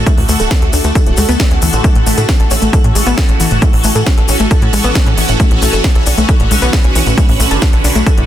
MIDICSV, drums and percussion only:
0, 0, Header, 1, 2, 480
1, 0, Start_track
1, 0, Key_signature, 3, "major"
1, 0, Tempo, 444444
1, 70, Time_signature, 4, 2, 24, 8
1, 8923, End_track
2, 0, Start_track
2, 0, Title_t, "Drums"
2, 67, Note_on_c, 9, 82, 39
2, 70, Note_on_c, 9, 36, 118
2, 71, Note_on_c, 9, 42, 80
2, 175, Note_off_c, 9, 82, 0
2, 178, Note_off_c, 9, 36, 0
2, 179, Note_off_c, 9, 42, 0
2, 190, Note_on_c, 9, 46, 61
2, 298, Note_off_c, 9, 46, 0
2, 308, Note_on_c, 9, 82, 89
2, 310, Note_on_c, 9, 46, 102
2, 416, Note_off_c, 9, 82, 0
2, 418, Note_off_c, 9, 46, 0
2, 430, Note_on_c, 9, 42, 51
2, 435, Note_on_c, 9, 82, 48
2, 538, Note_off_c, 9, 42, 0
2, 543, Note_off_c, 9, 82, 0
2, 550, Note_on_c, 9, 36, 117
2, 550, Note_on_c, 9, 38, 120
2, 550, Note_on_c, 9, 42, 76
2, 658, Note_off_c, 9, 36, 0
2, 658, Note_off_c, 9, 38, 0
2, 658, Note_off_c, 9, 42, 0
2, 670, Note_on_c, 9, 42, 52
2, 778, Note_off_c, 9, 42, 0
2, 789, Note_on_c, 9, 82, 88
2, 790, Note_on_c, 9, 46, 105
2, 897, Note_off_c, 9, 82, 0
2, 898, Note_off_c, 9, 46, 0
2, 910, Note_on_c, 9, 42, 51
2, 910, Note_on_c, 9, 82, 50
2, 1018, Note_off_c, 9, 42, 0
2, 1018, Note_off_c, 9, 82, 0
2, 1030, Note_on_c, 9, 36, 115
2, 1030, Note_on_c, 9, 42, 79
2, 1032, Note_on_c, 9, 82, 42
2, 1138, Note_off_c, 9, 36, 0
2, 1138, Note_off_c, 9, 42, 0
2, 1140, Note_off_c, 9, 82, 0
2, 1150, Note_on_c, 9, 42, 54
2, 1258, Note_off_c, 9, 42, 0
2, 1262, Note_on_c, 9, 82, 87
2, 1270, Note_on_c, 9, 46, 108
2, 1370, Note_off_c, 9, 82, 0
2, 1378, Note_off_c, 9, 46, 0
2, 1390, Note_on_c, 9, 42, 48
2, 1398, Note_on_c, 9, 82, 56
2, 1498, Note_off_c, 9, 42, 0
2, 1506, Note_off_c, 9, 82, 0
2, 1510, Note_on_c, 9, 36, 113
2, 1510, Note_on_c, 9, 38, 117
2, 1510, Note_on_c, 9, 42, 76
2, 1618, Note_off_c, 9, 36, 0
2, 1618, Note_off_c, 9, 38, 0
2, 1618, Note_off_c, 9, 42, 0
2, 1630, Note_on_c, 9, 42, 54
2, 1738, Note_off_c, 9, 42, 0
2, 1749, Note_on_c, 9, 82, 84
2, 1750, Note_on_c, 9, 46, 111
2, 1857, Note_off_c, 9, 82, 0
2, 1858, Note_off_c, 9, 46, 0
2, 1866, Note_on_c, 9, 82, 56
2, 1870, Note_on_c, 9, 42, 48
2, 1974, Note_off_c, 9, 82, 0
2, 1978, Note_off_c, 9, 42, 0
2, 1988, Note_on_c, 9, 82, 41
2, 1990, Note_on_c, 9, 36, 121
2, 1990, Note_on_c, 9, 42, 77
2, 2096, Note_off_c, 9, 82, 0
2, 2098, Note_off_c, 9, 36, 0
2, 2098, Note_off_c, 9, 42, 0
2, 2110, Note_on_c, 9, 42, 50
2, 2218, Note_off_c, 9, 42, 0
2, 2230, Note_on_c, 9, 46, 107
2, 2232, Note_on_c, 9, 82, 88
2, 2338, Note_off_c, 9, 46, 0
2, 2340, Note_off_c, 9, 82, 0
2, 2349, Note_on_c, 9, 82, 58
2, 2350, Note_on_c, 9, 42, 51
2, 2457, Note_off_c, 9, 82, 0
2, 2458, Note_off_c, 9, 42, 0
2, 2470, Note_on_c, 9, 36, 117
2, 2470, Note_on_c, 9, 38, 115
2, 2470, Note_on_c, 9, 42, 76
2, 2474, Note_on_c, 9, 82, 43
2, 2578, Note_off_c, 9, 36, 0
2, 2578, Note_off_c, 9, 38, 0
2, 2578, Note_off_c, 9, 42, 0
2, 2582, Note_off_c, 9, 82, 0
2, 2590, Note_on_c, 9, 42, 49
2, 2698, Note_off_c, 9, 42, 0
2, 2706, Note_on_c, 9, 82, 89
2, 2711, Note_on_c, 9, 46, 105
2, 2814, Note_off_c, 9, 82, 0
2, 2819, Note_off_c, 9, 46, 0
2, 2825, Note_on_c, 9, 82, 53
2, 2830, Note_on_c, 9, 42, 51
2, 2933, Note_off_c, 9, 82, 0
2, 2938, Note_off_c, 9, 42, 0
2, 2950, Note_on_c, 9, 36, 117
2, 2951, Note_on_c, 9, 42, 74
2, 2953, Note_on_c, 9, 82, 40
2, 3058, Note_off_c, 9, 36, 0
2, 3059, Note_off_c, 9, 42, 0
2, 3061, Note_off_c, 9, 82, 0
2, 3070, Note_on_c, 9, 42, 51
2, 3178, Note_off_c, 9, 42, 0
2, 3190, Note_on_c, 9, 46, 110
2, 3194, Note_on_c, 9, 82, 105
2, 3298, Note_off_c, 9, 46, 0
2, 3302, Note_off_c, 9, 82, 0
2, 3310, Note_on_c, 9, 42, 49
2, 3317, Note_on_c, 9, 82, 58
2, 3418, Note_off_c, 9, 42, 0
2, 3425, Note_off_c, 9, 82, 0
2, 3430, Note_on_c, 9, 36, 119
2, 3430, Note_on_c, 9, 38, 114
2, 3430, Note_on_c, 9, 42, 70
2, 3538, Note_off_c, 9, 36, 0
2, 3538, Note_off_c, 9, 38, 0
2, 3538, Note_off_c, 9, 42, 0
2, 3550, Note_on_c, 9, 42, 51
2, 3658, Note_off_c, 9, 42, 0
2, 3670, Note_on_c, 9, 46, 109
2, 3675, Note_on_c, 9, 82, 99
2, 3778, Note_off_c, 9, 46, 0
2, 3783, Note_off_c, 9, 82, 0
2, 3791, Note_on_c, 9, 42, 47
2, 3791, Note_on_c, 9, 82, 46
2, 3899, Note_off_c, 9, 42, 0
2, 3899, Note_off_c, 9, 82, 0
2, 3906, Note_on_c, 9, 82, 42
2, 3910, Note_on_c, 9, 36, 118
2, 3910, Note_on_c, 9, 42, 76
2, 4014, Note_off_c, 9, 82, 0
2, 4018, Note_off_c, 9, 36, 0
2, 4018, Note_off_c, 9, 42, 0
2, 4030, Note_on_c, 9, 46, 60
2, 4138, Note_off_c, 9, 46, 0
2, 4144, Note_on_c, 9, 82, 93
2, 4150, Note_on_c, 9, 46, 107
2, 4252, Note_off_c, 9, 82, 0
2, 4258, Note_off_c, 9, 46, 0
2, 4269, Note_on_c, 9, 82, 50
2, 4270, Note_on_c, 9, 42, 49
2, 4377, Note_off_c, 9, 82, 0
2, 4378, Note_off_c, 9, 42, 0
2, 4390, Note_on_c, 9, 36, 115
2, 4390, Note_on_c, 9, 38, 112
2, 4390, Note_on_c, 9, 42, 70
2, 4498, Note_off_c, 9, 36, 0
2, 4498, Note_off_c, 9, 38, 0
2, 4498, Note_off_c, 9, 42, 0
2, 4511, Note_on_c, 9, 42, 47
2, 4619, Note_off_c, 9, 42, 0
2, 4625, Note_on_c, 9, 82, 96
2, 4630, Note_on_c, 9, 46, 100
2, 4733, Note_off_c, 9, 82, 0
2, 4738, Note_off_c, 9, 46, 0
2, 4744, Note_on_c, 9, 82, 55
2, 4750, Note_on_c, 9, 42, 49
2, 4852, Note_off_c, 9, 82, 0
2, 4858, Note_off_c, 9, 42, 0
2, 4868, Note_on_c, 9, 82, 41
2, 4870, Note_on_c, 9, 36, 114
2, 4870, Note_on_c, 9, 42, 72
2, 4976, Note_off_c, 9, 82, 0
2, 4978, Note_off_c, 9, 36, 0
2, 4978, Note_off_c, 9, 42, 0
2, 4990, Note_on_c, 9, 42, 50
2, 5098, Note_off_c, 9, 42, 0
2, 5110, Note_on_c, 9, 46, 107
2, 5117, Note_on_c, 9, 82, 97
2, 5218, Note_off_c, 9, 46, 0
2, 5225, Note_off_c, 9, 82, 0
2, 5230, Note_on_c, 9, 42, 46
2, 5234, Note_on_c, 9, 82, 53
2, 5338, Note_off_c, 9, 42, 0
2, 5342, Note_off_c, 9, 82, 0
2, 5350, Note_on_c, 9, 36, 120
2, 5350, Note_on_c, 9, 38, 111
2, 5350, Note_on_c, 9, 42, 69
2, 5351, Note_on_c, 9, 82, 40
2, 5458, Note_off_c, 9, 36, 0
2, 5458, Note_off_c, 9, 38, 0
2, 5458, Note_off_c, 9, 42, 0
2, 5459, Note_off_c, 9, 82, 0
2, 5470, Note_on_c, 9, 42, 50
2, 5578, Note_off_c, 9, 42, 0
2, 5590, Note_on_c, 9, 46, 108
2, 5599, Note_on_c, 9, 82, 84
2, 5698, Note_off_c, 9, 46, 0
2, 5707, Note_off_c, 9, 82, 0
2, 5710, Note_on_c, 9, 42, 48
2, 5710, Note_on_c, 9, 82, 53
2, 5818, Note_off_c, 9, 42, 0
2, 5818, Note_off_c, 9, 82, 0
2, 5830, Note_on_c, 9, 36, 113
2, 5830, Note_on_c, 9, 42, 75
2, 5832, Note_on_c, 9, 82, 35
2, 5938, Note_off_c, 9, 36, 0
2, 5938, Note_off_c, 9, 42, 0
2, 5940, Note_off_c, 9, 82, 0
2, 5950, Note_on_c, 9, 42, 50
2, 6058, Note_off_c, 9, 42, 0
2, 6070, Note_on_c, 9, 46, 99
2, 6074, Note_on_c, 9, 82, 96
2, 6178, Note_off_c, 9, 46, 0
2, 6182, Note_off_c, 9, 82, 0
2, 6190, Note_on_c, 9, 42, 49
2, 6195, Note_on_c, 9, 82, 51
2, 6298, Note_off_c, 9, 42, 0
2, 6303, Note_off_c, 9, 82, 0
2, 6310, Note_on_c, 9, 36, 111
2, 6310, Note_on_c, 9, 38, 107
2, 6310, Note_on_c, 9, 42, 72
2, 6418, Note_off_c, 9, 36, 0
2, 6418, Note_off_c, 9, 38, 0
2, 6418, Note_off_c, 9, 42, 0
2, 6430, Note_on_c, 9, 42, 50
2, 6538, Note_off_c, 9, 42, 0
2, 6550, Note_on_c, 9, 46, 100
2, 6550, Note_on_c, 9, 82, 96
2, 6658, Note_off_c, 9, 46, 0
2, 6658, Note_off_c, 9, 82, 0
2, 6670, Note_on_c, 9, 42, 50
2, 6670, Note_on_c, 9, 82, 53
2, 6778, Note_off_c, 9, 42, 0
2, 6778, Note_off_c, 9, 82, 0
2, 6790, Note_on_c, 9, 36, 113
2, 6790, Note_on_c, 9, 42, 71
2, 6794, Note_on_c, 9, 82, 36
2, 6898, Note_off_c, 9, 36, 0
2, 6898, Note_off_c, 9, 42, 0
2, 6902, Note_off_c, 9, 82, 0
2, 6910, Note_on_c, 9, 42, 50
2, 7018, Note_off_c, 9, 42, 0
2, 7030, Note_on_c, 9, 46, 106
2, 7039, Note_on_c, 9, 82, 96
2, 7138, Note_off_c, 9, 46, 0
2, 7147, Note_off_c, 9, 82, 0
2, 7150, Note_on_c, 9, 42, 48
2, 7155, Note_on_c, 9, 82, 55
2, 7258, Note_off_c, 9, 42, 0
2, 7263, Note_off_c, 9, 82, 0
2, 7270, Note_on_c, 9, 36, 113
2, 7270, Note_on_c, 9, 38, 108
2, 7270, Note_on_c, 9, 42, 74
2, 7378, Note_off_c, 9, 36, 0
2, 7378, Note_off_c, 9, 38, 0
2, 7378, Note_off_c, 9, 42, 0
2, 7390, Note_on_c, 9, 42, 51
2, 7498, Note_off_c, 9, 42, 0
2, 7510, Note_on_c, 9, 46, 104
2, 7512, Note_on_c, 9, 82, 85
2, 7618, Note_off_c, 9, 46, 0
2, 7620, Note_off_c, 9, 82, 0
2, 7630, Note_on_c, 9, 42, 47
2, 7640, Note_on_c, 9, 82, 46
2, 7738, Note_off_c, 9, 42, 0
2, 7748, Note_off_c, 9, 82, 0
2, 7750, Note_on_c, 9, 36, 110
2, 7750, Note_on_c, 9, 42, 77
2, 7752, Note_on_c, 9, 82, 38
2, 7858, Note_off_c, 9, 36, 0
2, 7858, Note_off_c, 9, 42, 0
2, 7860, Note_off_c, 9, 82, 0
2, 7870, Note_on_c, 9, 46, 56
2, 7978, Note_off_c, 9, 46, 0
2, 7990, Note_on_c, 9, 46, 99
2, 7995, Note_on_c, 9, 82, 91
2, 8098, Note_off_c, 9, 46, 0
2, 8103, Note_off_c, 9, 82, 0
2, 8108, Note_on_c, 9, 82, 46
2, 8110, Note_on_c, 9, 42, 51
2, 8216, Note_off_c, 9, 82, 0
2, 8218, Note_off_c, 9, 42, 0
2, 8226, Note_on_c, 9, 82, 39
2, 8230, Note_on_c, 9, 36, 112
2, 8230, Note_on_c, 9, 38, 107
2, 8230, Note_on_c, 9, 42, 73
2, 8334, Note_off_c, 9, 82, 0
2, 8338, Note_off_c, 9, 36, 0
2, 8338, Note_off_c, 9, 38, 0
2, 8338, Note_off_c, 9, 42, 0
2, 8350, Note_on_c, 9, 42, 50
2, 8458, Note_off_c, 9, 42, 0
2, 8471, Note_on_c, 9, 46, 94
2, 8473, Note_on_c, 9, 82, 83
2, 8579, Note_off_c, 9, 46, 0
2, 8581, Note_off_c, 9, 82, 0
2, 8588, Note_on_c, 9, 82, 54
2, 8591, Note_on_c, 9, 42, 52
2, 8696, Note_off_c, 9, 82, 0
2, 8699, Note_off_c, 9, 42, 0
2, 8710, Note_on_c, 9, 36, 105
2, 8710, Note_on_c, 9, 42, 76
2, 8720, Note_on_c, 9, 82, 34
2, 8818, Note_off_c, 9, 36, 0
2, 8818, Note_off_c, 9, 42, 0
2, 8828, Note_off_c, 9, 82, 0
2, 8830, Note_on_c, 9, 42, 53
2, 8923, Note_off_c, 9, 42, 0
2, 8923, End_track
0, 0, End_of_file